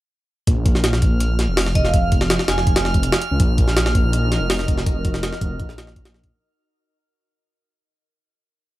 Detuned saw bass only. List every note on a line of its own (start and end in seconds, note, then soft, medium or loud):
0.47 1.47 A#1 loud
1.48 2.38 F1 medium
2.49 2.65 F1 loud
2.67 3.11 F1 loud
3.31 3.39 C#2 medium
3.40 4.39 A#1 loud
4.41 5.31 F1 medium
5.41 5.61 F1 loud
5.59 6.31 A#1 medium